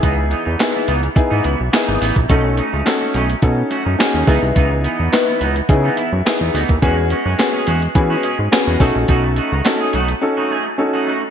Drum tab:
HH |x-x-x-xxx-x-x-o-|x-x-x-xxx-x-x-o-|x-x-x-xxx-x-x-o-|x-x-x-xxx-x-x-o-|
CP |----x-------x---|----x-------x---|----x-------x---|----x-------x---|
SD |----o-------o---|----o-------o---|----o-------o---|----o-------o---|
BD |o-------o------o|o-------o-----o-|o-------o------o|o-------o-----o-|

HH |x-x-x-xx--------|
CP |----x-----------|
SD |----o-----------|
BD |o---------------|